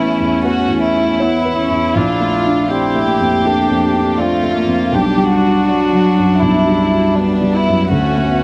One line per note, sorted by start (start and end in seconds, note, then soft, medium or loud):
0.00 0.41 A1 medium
0.00 1.21 A3 medium
0.00 0.44 B3 soft
0.00 1.22 C#4 medium
0.00 0.42 E4 medium
0.00 0.94 E4 soft
0.00 0.10 C#5 soft
0.20 0.60 E2 soft
0.44 0.85 B3 soft
0.44 0.83 F#4 medium
0.68 1.09 E2 soft
0.83 1.93 E4 medium
0.94 1.35 E4 soft
1.19 1.57 B3 medium
1.19 2.70 E4 medium
1.19 1.60 C#5 soft
1.45 1.85 B3 soft
1.57 1.98 C#4 medium
1.69 1.95 E2 soft
1.95 3.40 A#1 medium
1.95 2.70 D4 soft
1.95 2.70 F4 medium
2.20 2.60 A3 soft
2.46 2.85 D4 soft
2.70 3.07 C4 soft
2.70 3.47 E4 medium
2.70 4.19 G4 medium
2.70 3.10 D5 soft
2.95 3.35 A3 soft
3.08 4.21 A#3 medium
3.19 3.59 F2 soft
3.45 4.21 D4 medium
3.45 3.84 A4 soft
3.69 4.09 F2 soft
3.94 4.33 D4 soft
4.17 4.93 A3 medium
4.17 4.56 C4 medium
4.17 4.93 F4 medium
4.17 4.58 D5 soft
4.43 4.83 A3 soft
4.57 4.96 A#3 medium
4.67 4.92 F2 soft
4.92 6.38 B1 medium
4.92 5.70 G3 medium
4.92 7.19 D4 medium
4.92 5.31 G4 medium
5.18 5.58 G3 soft
5.31 6.40 F#4 medium
5.43 5.83 F#4 soft
5.68 6.44 F#3 medium
5.68 6.08 D5 soft
5.93 6.32 F#3 soft
6.18 6.58 F#2 soft
6.42 7.87 B1 soft
6.42 7.90 G3 medium
6.42 7.17 E4 medium
6.67 7.07 G3 soft
6.92 7.32 F#4 soft
7.16 7.91 B3 medium
7.16 7.53 D4 medium
7.16 7.57 D5 soft
7.42 7.81 G3 soft
7.53 7.91 E4 medium
7.67 7.92 F#2 soft
7.91 8.44 D2 medium
7.91 8.27 A3 medium
7.91 8.44 C#4 medium
7.91 8.44 F#4 medium
8.17 8.44 A3 soft
8.28 8.44 B3 medium